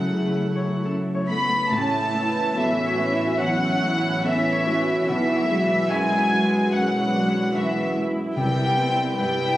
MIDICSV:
0, 0, Header, 1, 9, 480
1, 0, Start_track
1, 0, Key_signature, 3, "major"
1, 0, Tempo, 884956
1, 939, Tempo, 843882
1, 940, Time_signature, 4, 2, 24, 8
1, 1899, Tempo, 824176
1, 5483, End_track
2, 0, Start_track
2, 0, Title_t, "Violin section"
2, 0, Program_c, 0, 48
2, 0, Note_on_c, 0, 78, 49
2, 464, Note_off_c, 0, 78, 0
2, 703, Note_on_c, 0, 83, 50
2, 923, Note_off_c, 0, 83, 0
2, 944, Note_on_c, 0, 81, 58
2, 1421, Note_on_c, 0, 76, 53
2, 1424, Note_off_c, 0, 81, 0
2, 1896, Note_on_c, 0, 78, 63
2, 1900, Note_off_c, 0, 76, 0
2, 2374, Note_off_c, 0, 78, 0
2, 2384, Note_on_c, 0, 76, 59
2, 2859, Note_off_c, 0, 76, 0
2, 2865, Note_on_c, 0, 76, 63
2, 3337, Note_off_c, 0, 76, 0
2, 3353, Note_on_c, 0, 80, 68
2, 3832, Note_on_c, 0, 78, 59
2, 3835, Note_off_c, 0, 80, 0
2, 4309, Note_on_c, 0, 76, 55
2, 4313, Note_off_c, 0, 78, 0
2, 4549, Note_off_c, 0, 76, 0
2, 4781, Note_on_c, 0, 79, 65
2, 5234, Note_off_c, 0, 79, 0
2, 5247, Note_on_c, 0, 79, 64
2, 5483, Note_off_c, 0, 79, 0
2, 5483, End_track
3, 0, Start_track
3, 0, Title_t, "Violin section"
3, 0, Program_c, 1, 48
3, 697, Note_on_c, 1, 83, 49
3, 920, Note_off_c, 1, 83, 0
3, 936, Note_on_c, 1, 81, 54
3, 1413, Note_on_c, 1, 76, 53
3, 1419, Note_off_c, 1, 81, 0
3, 1891, Note_on_c, 1, 78, 53
3, 1896, Note_off_c, 1, 76, 0
3, 2382, Note_off_c, 1, 78, 0
3, 2384, Note_on_c, 1, 76, 52
3, 2853, Note_off_c, 1, 76, 0
3, 2860, Note_on_c, 1, 76, 54
3, 3335, Note_off_c, 1, 76, 0
3, 3342, Note_on_c, 1, 80, 61
3, 3825, Note_on_c, 1, 78, 48
3, 3829, Note_off_c, 1, 80, 0
3, 4307, Note_on_c, 1, 76, 45
3, 4309, Note_off_c, 1, 78, 0
3, 4548, Note_off_c, 1, 76, 0
3, 4782, Note_on_c, 1, 79, 56
3, 5235, Note_off_c, 1, 79, 0
3, 5258, Note_on_c, 1, 79, 58
3, 5483, Note_off_c, 1, 79, 0
3, 5483, End_track
4, 0, Start_track
4, 0, Title_t, "French horn section"
4, 0, Program_c, 2, 60
4, 933, Note_on_c, 2, 64, 43
4, 935, Note_on_c, 2, 61, 42
4, 2843, Note_off_c, 2, 64, 0
4, 2844, Note_off_c, 2, 61, 0
4, 2867, Note_on_c, 2, 59, 45
4, 2867, Note_on_c, 2, 66, 48
4, 4685, Note_off_c, 2, 59, 0
4, 4685, Note_off_c, 2, 66, 0
4, 4784, Note_on_c, 2, 71, 48
4, 4786, Note_on_c, 2, 64, 45
4, 5483, Note_off_c, 2, 64, 0
4, 5483, Note_off_c, 2, 71, 0
4, 5483, End_track
5, 0, Start_track
5, 0, Title_t, "Harp"
5, 0, Program_c, 3, 46
5, 0, Note_on_c, 3, 42, 43
5, 0, Note_on_c, 3, 49, 30
5, 0, Note_on_c, 3, 57, 30
5, 0, Note_on_c, 3, 69, 35
5, 0, Note_on_c, 3, 73, 31
5, 130, Note_off_c, 3, 57, 0
5, 137, Note_on_c, 3, 57, 27
5, 293, Note_off_c, 3, 73, 0
5, 300, Note_on_c, 3, 73, 30
5, 454, Note_off_c, 3, 69, 0
5, 461, Note_on_c, 3, 69, 28
5, 614, Note_off_c, 3, 73, 0
5, 621, Note_on_c, 3, 73, 31
5, 774, Note_off_c, 3, 57, 0
5, 781, Note_on_c, 3, 57, 28
5, 938, Note_on_c, 3, 45, 46
5, 958, Note_off_c, 3, 42, 0
5, 958, Note_off_c, 3, 49, 0
5, 1091, Note_off_c, 3, 57, 0
5, 1098, Note_on_c, 3, 57, 33
5, 1255, Note_on_c, 3, 64, 35
5, 1408, Note_off_c, 3, 69, 0
5, 1415, Note_on_c, 3, 69, 37
5, 1572, Note_off_c, 3, 73, 0
5, 1579, Note_on_c, 3, 73, 35
5, 1730, Note_off_c, 3, 64, 0
5, 1737, Note_on_c, 3, 64, 36
5, 1896, Note_on_c, 3, 52, 34
5, 2049, Note_off_c, 3, 57, 0
5, 2056, Note_on_c, 3, 57, 35
5, 2212, Note_off_c, 3, 64, 0
5, 2219, Note_on_c, 3, 64, 34
5, 2374, Note_off_c, 3, 69, 0
5, 2381, Note_on_c, 3, 69, 37
5, 2534, Note_off_c, 3, 73, 0
5, 2541, Note_on_c, 3, 73, 40
5, 2698, Note_off_c, 3, 64, 0
5, 2705, Note_on_c, 3, 64, 35
5, 2866, Note_on_c, 3, 47, 47
5, 2886, Note_off_c, 3, 57, 0
5, 2886, Note_off_c, 3, 73, 0
5, 2887, Note_off_c, 3, 52, 0
5, 2887, Note_off_c, 3, 69, 0
5, 2888, Note_off_c, 3, 45, 0
5, 3028, Note_on_c, 3, 54, 34
5, 3177, Note_off_c, 3, 64, 0
5, 3184, Note_on_c, 3, 64, 35
5, 3342, Note_on_c, 3, 66, 40
5, 3505, Note_on_c, 3, 76, 38
5, 3657, Note_off_c, 3, 64, 0
5, 3664, Note_on_c, 3, 64, 38
5, 3826, Note_on_c, 3, 59, 38
5, 3981, Note_off_c, 3, 54, 0
5, 3988, Note_on_c, 3, 54, 35
5, 4140, Note_off_c, 3, 64, 0
5, 4147, Note_on_c, 3, 64, 35
5, 4301, Note_off_c, 3, 66, 0
5, 4308, Note_on_c, 3, 66, 40
5, 4460, Note_off_c, 3, 76, 0
5, 4467, Note_on_c, 3, 76, 40
5, 4618, Note_off_c, 3, 64, 0
5, 4625, Note_on_c, 3, 64, 36
5, 4782, Note_on_c, 3, 48, 48
5, 4803, Note_off_c, 3, 47, 0
5, 4803, Note_off_c, 3, 54, 0
5, 4803, Note_off_c, 3, 66, 0
5, 4933, Note_off_c, 3, 59, 0
5, 4940, Note_on_c, 3, 59, 34
5, 5085, Note_off_c, 3, 64, 0
5, 5092, Note_on_c, 3, 64, 37
5, 5257, Note_on_c, 3, 71, 38
5, 5407, Note_off_c, 3, 76, 0
5, 5414, Note_on_c, 3, 76, 40
5, 5483, Note_off_c, 3, 48, 0
5, 5483, Note_off_c, 3, 59, 0
5, 5483, Note_off_c, 3, 64, 0
5, 5483, Note_off_c, 3, 71, 0
5, 5483, Note_off_c, 3, 76, 0
5, 5483, End_track
6, 0, Start_track
6, 0, Title_t, "Viola section"
6, 0, Program_c, 4, 48
6, 0, Note_on_c, 4, 57, 44
6, 0, Note_on_c, 4, 64, 41
6, 804, Note_off_c, 4, 57, 0
6, 804, Note_off_c, 4, 64, 0
6, 931, Note_on_c, 4, 64, 43
6, 933, Note_on_c, 4, 61, 45
6, 1160, Note_off_c, 4, 61, 0
6, 1179, Note_on_c, 4, 59, 46
6, 1394, Note_off_c, 4, 64, 0
6, 1421, Note_off_c, 4, 59, 0
6, 1422, Note_on_c, 4, 66, 41
6, 1423, Note_on_c, 4, 57, 46
6, 1663, Note_off_c, 4, 57, 0
6, 1667, Note_on_c, 4, 61, 42
6, 1900, Note_off_c, 4, 66, 0
6, 1900, Note_on_c, 4, 64, 45
6, 2374, Note_off_c, 4, 61, 0
6, 2377, Note_off_c, 4, 64, 0
6, 2384, Note_on_c, 4, 64, 46
6, 2385, Note_on_c, 4, 61, 43
6, 2623, Note_off_c, 4, 64, 0
6, 2623, Note_on_c, 4, 66, 43
6, 2855, Note_on_c, 4, 59, 48
6, 2860, Note_off_c, 4, 61, 0
6, 2860, Note_on_c, 4, 64, 51
6, 2867, Note_off_c, 4, 66, 0
6, 3101, Note_on_c, 4, 56, 46
6, 3102, Note_off_c, 4, 59, 0
6, 3822, Note_off_c, 4, 64, 0
6, 3829, Note_on_c, 4, 64, 49
6, 4064, Note_on_c, 4, 62, 49
6, 4067, Note_off_c, 4, 64, 0
6, 4308, Note_off_c, 4, 62, 0
6, 4311, Note_on_c, 4, 64, 46
6, 4783, Note_off_c, 4, 56, 0
6, 4791, Note_on_c, 4, 55, 50
6, 5023, Note_on_c, 4, 60, 46
6, 5025, Note_off_c, 4, 55, 0
6, 5254, Note_off_c, 4, 64, 0
6, 5256, Note_off_c, 4, 60, 0
6, 5261, Note_on_c, 4, 64, 48
6, 5264, Note_on_c, 4, 59, 45
6, 5483, Note_off_c, 4, 59, 0
6, 5483, Note_off_c, 4, 64, 0
6, 5483, End_track
7, 0, Start_track
7, 0, Title_t, "Cello section"
7, 0, Program_c, 5, 48
7, 0, Note_on_c, 5, 42, 45
7, 701, Note_on_c, 5, 59, 40
7, 704, Note_off_c, 5, 42, 0
7, 921, Note_off_c, 5, 59, 0
7, 937, Note_on_c, 5, 57, 43
7, 1420, Note_off_c, 5, 57, 0
7, 1422, Note_on_c, 5, 52, 46
7, 1900, Note_off_c, 5, 52, 0
7, 1903, Note_on_c, 5, 54, 50
7, 2385, Note_on_c, 5, 52, 51
7, 2387, Note_off_c, 5, 54, 0
7, 2865, Note_off_c, 5, 52, 0
7, 2872, Note_on_c, 5, 52, 53
7, 3341, Note_off_c, 5, 52, 0
7, 3351, Note_on_c, 5, 56, 51
7, 3833, Note_off_c, 5, 56, 0
7, 3834, Note_on_c, 5, 54, 47
7, 4313, Note_on_c, 5, 52, 43
7, 4314, Note_off_c, 5, 54, 0
7, 4551, Note_off_c, 5, 52, 0
7, 4783, Note_on_c, 5, 55, 54
7, 5235, Note_off_c, 5, 55, 0
7, 5259, Note_on_c, 5, 55, 48
7, 5483, Note_off_c, 5, 55, 0
7, 5483, End_track
8, 0, Start_track
8, 0, Title_t, "Grand piano"
8, 0, Program_c, 6, 0
8, 0, Control_c, 6, 64, 127
8, 0, Note_on_c, 6, 42, 39
8, 0, Note_on_c, 6, 49, 30
8, 0, Note_on_c, 6, 57, 29
8, 127, Note_off_c, 6, 57, 0
8, 221, Note_on_c, 6, 57, 30
8, 366, Note_off_c, 6, 49, 0
8, 461, Note_on_c, 6, 49, 28
8, 607, Note_off_c, 6, 57, 0
8, 703, Note_on_c, 6, 57, 28
8, 846, Note_off_c, 6, 49, 0
8, 930, Note_on_c, 6, 33, 42
8, 939, Note_off_c, 6, 57, 0
8, 951, Control_c, 6, 64, 0
8, 954, Note_off_c, 6, 42, 0
8, 1033, Control_c, 6, 64, 127
8, 1168, Note_on_c, 6, 57, 32
8, 1408, Note_on_c, 6, 40, 33
8, 1560, Note_off_c, 6, 57, 0
8, 1648, Note_on_c, 6, 57, 32
8, 1798, Note_off_c, 6, 40, 0
8, 1872, Note_off_c, 6, 33, 0
8, 1894, Note_on_c, 6, 40, 36
8, 2038, Note_off_c, 6, 57, 0
8, 2135, Note_on_c, 6, 57, 33
8, 2285, Note_off_c, 6, 40, 0
8, 2372, Note_on_c, 6, 40, 34
8, 2528, Note_off_c, 6, 57, 0
8, 2620, Note_on_c, 6, 57, 33
8, 2767, Note_off_c, 6, 40, 0
8, 2865, Note_off_c, 6, 57, 0
8, 2870, Note_on_c, 6, 35, 45
8, 2880, Control_c, 6, 64, 0
8, 2973, Control_c, 6, 64, 127
8, 3108, Note_on_c, 6, 54, 33
8, 3347, Note_on_c, 6, 42, 33
8, 3493, Note_off_c, 6, 54, 0
8, 3589, Note_on_c, 6, 54, 33
8, 3735, Note_off_c, 6, 42, 0
8, 3809, Note_off_c, 6, 35, 0
8, 3828, Note_on_c, 6, 42, 38
8, 3976, Note_off_c, 6, 54, 0
8, 4067, Note_on_c, 6, 54, 34
8, 4215, Note_off_c, 6, 42, 0
8, 4306, Note_on_c, 6, 42, 34
8, 4453, Note_off_c, 6, 54, 0
8, 4549, Note_on_c, 6, 54, 34
8, 4689, Note_off_c, 6, 42, 0
8, 4780, Note_on_c, 6, 36, 43
8, 4786, Note_off_c, 6, 54, 0
8, 4797, Control_c, 6, 64, 0
8, 4885, Control_c, 6, 64, 127
8, 5013, Note_on_c, 6, 59, 35
8, 5259, Note_on_c, 6, 43, 34
8, 5399, Note_off_c, 6, 59, 0
8, 5483, Note_off_c, 6, 36, 0
8, 5483, Note_off_c, 6, 43, 0
8, 5483, End_track
9, 0, Start_track
9, 0, Title_t, "Double bass section"
9, 0, Program_c, 7, 48
9, 932, Note_on_c, 7, 33, 48
9, 2842, Note_off_c, 7, 33, 0
9, 2864, Note_on_c, 7, 35, 48
9, 4782, Note_on_c, 7, 36, 49
9, 4784, Note_off_c, 7, 35, 0
9, 5483, Note_off_c, 7, 36, 0
9, 5483, End_track
0, 0, End_of_file